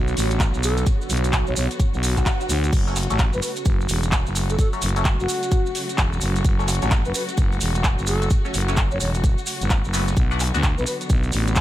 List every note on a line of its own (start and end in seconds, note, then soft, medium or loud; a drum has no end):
0.00 0.15 B1 loud
0.00 2.69 D3 medium
0.00 2.69 F#3 medium
0.00 2.69 B3 medium
0.00 3.90 B3 medium
0.00 2.69 F#4 medium
0.00 10.17 F#4 medium
0.00 10.17 C#5 medium
0.08 maracas soft
0.17 0.52 A1 loud
0.17 open hi-hat loud
0.17 maracas medium
0.31 closed hi-hat medium
0.31 maracas soft
0.40 kick loud
0.40 clap loud
0.40 closed hi-hat medium
0.40 maracas soft
0.54 0.85 B1 loud
0.54 maracas soft
0.63 0.84 A4 medium
0.63 open hi-hat medium
0.63 maracas medium
0.77 closed hi-hat medium
0.77 maracas soft
0.86 kick loud
0.86 closed hi-hat medium
0.86 maracas medium
1.02 maracas soft
1.10 1.45 B1 loud
1.10 open hi-hat loud
1.10 maracas loud
1.17 closed hi-hat medium
1.24 closed hi-hat medium
1.24 maracas soft
1.33 kick loud
1.33 clap loud
1.33 closed hi-hat medium
1.33 maracas medium
1.47 1.55 B1 loud
1.47 1.53 C#5 medium
1.47 maracas soft
1.56 1.68 B1 medium
1.56 1.66 C#5 medium
1.56 open hi-hat medium
1.56 maracas medium
1.71 closed hi-hat medium
1.71 maracas soft
1.80 kick loud
1.80 closed hi-hat medium
1.80 swell medium
1.80 maracas soft
1.94 2.25 B1 loud
1.94 maracas soft
2.03 open hi-hat loud
2.03 maracas medium
2.17 kick medium
2.17 clap soft
2.17 closed hi-hat medium
2.17 maracas soft
2.26 kick loud
2.26 clap loud
2.26 closed hi-hat medium
2.26 maracas medium
2.41 maracas soft
2.49 2.71 D2 loud
2.49 open hi-hat medium
2.49 maracas medium
2.64 closed hi-hat medium
2.64 maracas soft
2.73 3.08 F#1 medium
2.73 10.13 C#3 medium
2.73 10.13 F#3 medium
2.73 10.13 A3 medium
2.73 11.61 F#4 medium
2.73 kick loud
2.73 closed hi-hat medium
2.73 crash medium
2.73 maracas soft
2.87 2.97 F#3 medium
2.87 2.97 A3 medium
2.87 2.97 C#4 loud
2.87 maracas soft
2.96 clap soft
2.96 open hi-hat loud
2.96 maracas loud
3.03 closed hi-hat medium
3.10 3.31 A1 loud
3.10 3.20 F#3 medium
3.10 3.20 A3 medium
3.10 3.20 C#4 medium
3.10 closed hi-hat medium
3.10 maracas soft
3.19 kick loud
3.19 clap loud
3.19 closed hi-hat medium
3.19 maracas medium
3.33 3.41 F#1 loud
3.33 3.39 B4 medium
3.33 maracas soft
3.42 3.52 B4 medium
3.42 open hi-hat medium
3.42 maracas medium
3.56 closed hi-hat medium
3.56 maracas soft
3.65 3.87 F#1 loud
3.65 kick loud
3.65 closed hi-hat medium
3.65 maracas medium
3.81 maracas soft
3.89 4.24 E1 loud
3.89 open hi-hat loud
3.89 maracas medium
4.03 closed hi-hat medium
4.03 maracas soft
4.12 kick loud
4.12 clap loud
4.12 closed hi-hat medium
4.12 maracas medium
4.26 4.57 F#1 medium
4.26 11.61 F#5 medium
4.26 maracas soft
4.35 open hi-hat medium
4.35 maracas loud
4.49 4.55 A4 medium
4.49 closed hi-hat medium
4.49 maracas soft
4.59 4.68 A4 medium
4.59 kick loud
4.59 closed hi-hat medium
4.59 maracas medium
4.73 4.83 F#3 medium
4.73 4.83 A3 medium
4.73 4.83 C#4 medium
4.73 maracas soft
4.82 5.17 F#1 loud
4.82 open hi-hat loud
4.82 maracas medium
4.89 closed hi-hat medium
4.96 5.15 F#3 medium
4.96 5.15 A3 medium
4.96 5.15 C#4 medium
4.96 closed hi-hat medium
4.96 maracas soft
5.05 kick loud
5.05 clap loud
5.05 closed hi-hat medium
5.05 maracas medium
5.19 5.27 F#1 loud
5.19 5.84 F#4 loud
5.19 maracas soft
5.28 open hi-hat medium
5.28 maracas loud
5.43 closed hi-hat medium
5.43 maracas soft
5.51 kick loud
5.51 closed hi-hat medium
5.51 maracas medium
5.66 maracas soft
5.75 open hi-hat loud
5.75 maracas medium
5.89 closed hi-hat medium
5.89 maracas soft
5.98 6.20 E1 loud
5.98 kick loud
5.98 clap loud
5.98 closed hi-hat medium
5.98 maracas medium
6.13 maracas soft
6.21 6.43 F#1 loud
6.21 open hi-hat medium
6.21 maracas medium
6.36 closed hi-hat medium
6.36 maracas soft
6.45 kick loud
6.45 closed hi-hat medium
6.45 maracas medium
6.59 6.69 F#3 medium
6.59 6.69 A3 medium
6.59 6.69 C#4 loud
6.59 maracas soft
6.68 clap soft
6.68 open hi-hat loud
6.68 maracas loud
6.75 closed hi-hat medium
6.82 7.03 A1 loud
6.82 6.92 F#3 medium
6.82 6.92 A3 medium
6.82 6.92 C#4 medium
6.82 closed hi-hat soft
6.82 maracas soft
6.91 kick loud
6.91 clap loud
6.91 closed hi-hat medium
6.91 maracas medium
7.05 7.13 F#1 medium
7.05 7.11 B4 medium
7.05 maracas soft
7.14 7.24 B4 medium
7.14 open hi-hat loud
7.14 maracas loud
7.29 closed hi-hat medium
7.29 maracas soft
7.37 7.60 F#1 loud
7.37 kick loud
7.37 closed hi-hat medium
7.37 maracas medium
7.52 maracas soft
7.61 7.96 E1 loud
7.61 open hi-hat loud
7.61 maracas loud
7.75 closed hi-hat medium
7.75 maracas soft
7.84 kick loud
7.84 clap loud
7.84 closed hi-hat medium
7.84 maracas medium
7.98 8.29 F#1 loud
7.98 maracas soft
8.07 8.28 A4 medium
8.07 open hi-hat loud
8.07 maracas medium
8.22 closed hi-hat medium
8.22 maracas soft
8.30 kick loud
8.30 closed hi-hat medium
8.30 maracas medium
8.45 8.55 F#3 medium
8.45 8.55 A3 medium
8.45 8.55 C#4 medium
8.45 maracas soft
8.54 8.89 F#1 loud
8.54 open hi-hat loud
8.54 maracas medium
8.61 closed hi-hat medium
8.68 8.87 F#3 medium
8.68 8.87 A3 medium
8.68 8.87 C#4 medium
8.68 closed hi-hat soft
8.68 maracas soft
8.77 kick loud
8.77 clap loud
8.77 closed hi-hat medium
8.77 maracas medium
8.91 8.99 F#1 loud
8.91 8.97 C#5 medium
8.91 maracas soft
9.00 9.36 E1 loud
9.00 9.10 C#5 medium
9.00 open hi-hat medium
9.00 maracas loud
9.14 closed hi-hat medium
9.14 maracas soft
9.24 kick loud
9.24 closed hi-hat medium
9.24 maracas medium
9.38 maracas soft
9.46 open hi-hat loud
9.46 maracas loud
9.61 9.82 G1 loud
9.61 closed hi-hat medium
9.61 maracas soft
9.70 kick loud
9.70 clap loud
9.70 closed hi-hat medium
9.70 maracas medium
9.84 10.15 F#1 medium
9.84 maracas soft
9.93 10.14 F#3 medium
9.93 10.14 A3 medium
9.93 10.14 B3 loud
9.93 open hi-hat medium
9.93 maracas medium
10.08 closed hi-hat soft
10.08 maracas soft
10.17 10.52 B1 medium
10.17 11.61 D3 medium
10.17 11.61 F#3 medium
10.17 11.61 B3 medium
10.17 kick loud
10.17 closed hi-hat medium
10.17 maracas medium
10.31 10.41 B3 medium
10.31 10.41 D4 medium
10.31 10.41 F#4 loud
10.31 maracas soft
10.39 clap soft
10.39 open hi-hat loud
10.39 maracas loud
10.47 closed hi-hat medium
10.54 10.75 D2 loud
10.54 10.64 B3 medium
10.54 10.64 D4 medium
10.54 10.64 F#4 medium
10.54 closed hi-hat medium
10.54 maracas soft
10.60 11.61 C#5 medium
10.60 kick loud
10.60 clap loud
10.60 closed hi-hat medium
10.60 maracas medium
10.78 10.85 B1 loud
10.78 10.83 B4 medium
10.78 maracas soft
10.87 10.96 B4 medium
10.87 open hi-hat medium
10.87 maracas medium
10.93 11.61 F#4 medium
11.01 closed hi-hat medium
11.01 maracas soft
11.10 11.32 B1 loud
11.10 kick loud
11.10 closed hi-hat medium
11.10 maracas medium
11.23 maracas soft
11.32 11.61 A1 loud
11.32 open hi-hat loud
11.32 maracas medium
11.47 closed hi-hat medium
11.47 maracas soft
11.56 kick loud
11.56 clap loud
11.56 closed hi-hat medium
11.56 maracas medium